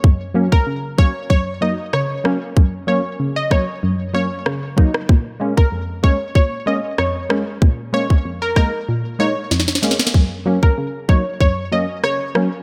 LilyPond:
<<
  \new Staff \with { instrumentName = "Synth pluck" } { \time 4/4 \key fis \major \tempo 4 = 95 r8. ais'16 r8 cis''16 r16 cis''16 r16 dis''16 r16 cis''8. r16 | r8 cis''16 r8 dis''16 cis''16 r8. cis''16 r4 r16 | r8. ais'16 r8 cis''16 r16 cis''16 r16 dis''16 r16 cis''8. r16 | r8 cis''16 r8 ais'16 ais'16 r8. cis''16 r4 r16 |
r8. ais'16 r8 cis''16 r16 cis''16 r16 dis''16 r16 cis''8. r16 | }
  \new Staff \with { instrumentName = "Synth stab" } { \time 4/4 \key fis \major << { r8 <fis ais cis'>8 r8 <fis ais cis'>8 r8 <fis ais dis'>8 r8 <fis ais cis'>8 | r8 <fis ais cis'>8 r8 <fis ais cis'>8 r8 <fis ais cis'>8 r8 <fis ais dis'>8 | r8 <gis ais cis'>8 r8 <gis ais cis'>8 r8 <gis ais cis'>8 r8 <gis ais cis'>8 | r8 <gis ais cis'>8 r8 <gis ais dis'>8 r8 <gis ais dis'>8 r8 <gis ais cis'>8 |
r8 <fis ais cis'>8 r8 <fis ais dis'>8 r8 <fis ais cis'>8 r8 <fis ais cis'>8 | } \\ { fis,4 cis4 fis,4 cis4 | fis,4 cis4 fis,4 cis4 | ais,4 eis,4 ais,4 eis,4 | ais,4 eis,4 ais,4 eis,4 |
fis,4 cis4 fis,4 cis4 | } >> }
  \new DrumStaff \with { instrumentName = "Drums" } \drummode { \time 4/4 bd8. bd16 r8 bd8 bd4 ss8 ss8 | bd4 r8 <bd ss>8 r4 ss8 bd16 ss16 | bd8. bd16 r8 bd8 bd4 ss8 ss8 | bd8. bd16 r8 <bd ss>8 r4 sn32 sn32 sn32 sn32 sn32 sn32 sn32 sn32 |
bd8. bd16 r8 bd8 bd4 ss8 ss8 | }
>>